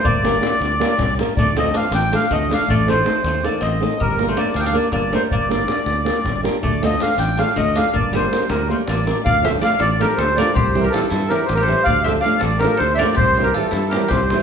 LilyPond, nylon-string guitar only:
\new Staff \with { instrumentName = "Nylon-string guitar" } { \time 7/8 \key g \minor \tempo 4 = 160 r8 <bes d' g' bes'>8 <bes d' g' bes'>8 r8 <bes d' g' bes'>8 r8 <bes d' g' bes'>8 | r8 <a d' f' a'>8 <a d' f' a'>8 r8 <a d' f' a'>8 r8 <a d' f' a'>8 | r8 <a c' ees' a'>8 <a c' ees' a'>8 r8 <a c' ees' a'>8 r8 <a c' ees' a'>8 | r8 <bes d' g' bes'>8 <bes d' g' bes'>8 r8 <bes d' g' bes'>8 r8 <bes d' g' bes'>8 |
r8 <bes d' g' bes'>8 <bes d' g' bes'>8 r8 <bes d' g' bes'>8 r8 <bes d' g' bes'>8 | r8 <a d' f' a'>8 <a d' f' a'>8 r8 <a d' f' a'>8 r8 <a d' f' a'>8 | r8 <bes d' g' bes'>8 <bes d' g' bes'>8 r8 <bes d' g' bes'>8 r8 <bes d' g' bes'>8 | \key d \minor r8 <f a d' f' a'>8 <f a d' f' a'>8 r8 <f a d' f' a'>8 r8 <f a d' f' a'>8 |
r8 <e g c' e' g'>8 <e g c' e' g'>8 r8 <e g c' e' g'>8 r8 <e g c' e' g'>8 | r8 <f a d' f' a'>8 <f a d' f' a'>8 r8 <f a d' f' a'>8 r8 <f a d' f' a'>8 | r8 <e g c' e' g'>8 <e g c' e' g'>8 r8 <e g c' e' g'>8 r8 <e g c' e' g'>8 | }